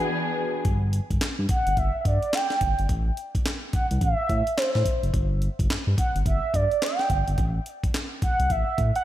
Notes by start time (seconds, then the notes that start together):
Already playing: E3 B3 D4 F#4 G#4 B4 G#5
0.65 G1, kick, closed hi-hat
0.93 closed hi-hat
1.10 G1, kick, closed hi-hat
1.21 snare, clap, closed hi-hat
1.39 G2
1.49 F#5, kick, closed hi-hat
1.67 G1, closed hi-hat
1.77 G1 E5, kick, closed hi-hat
2.01 E5
2.05 G2 D5, kick, closed hi-hat
2.23 closed hi-hat
2.33 G5, snare, clap, closed hi-hat
2.50 snare
2.61 G1, kick, closed hi-hat
2.79 G1, closed hi-hat
2.89 A1, kick, closed hi-hat
3.17 closed hi-hat
3.35 C2, kick, closed hi-hat
3.46 snare, clap, closed hi-hat
3.73 C2 F#5, kick, closed hi-hat
3.91 C2, closed hi-hat
4.01 A1 E5, kick, closed hi-hat
4.29 A2, kick, closed hi-hat
4.47 closed hi-hat
4.57 C5, snare, clap, closed hi-hat
4.75 A2, snare
4.85 kick, closed hi-hat
5.03 F#1, closed hi-hat
5.14 G1, kick, closed hi-hat
5.42 closed hi-hat
5.59 G1, kick, closed hi-hat
5.70 snare, clap, closed hi-hat
5.87 G2
5.98 F#5, kick, closed hi-hat
6.15 G1, closed hi-hat
6.26 G1 E5, kick, closed hi-hat
6.54 G2 D5, kick, closed hi-hat
6.71 closed hi-hat
6.82 G5, snare, clap, closed hi-hat
6.99 snare
7.10 G1, kick, closed hi-hat
7.28 G1, closed hi-hat
7.38 A1, kick, closed hi-hat
7.66 closed hi-hat
7.83 C2, kick, closed hi-hat
7.94 snare, clap, closed hi-hat
8.22 C2 F#5, kick, closed hi-hat
8.39 C2, closed hi-hat
8.50 A1 E5, kick, closed hi-hat
8.78 A2, kick, closed hi-hat
8.96 F#5, closed hi-hat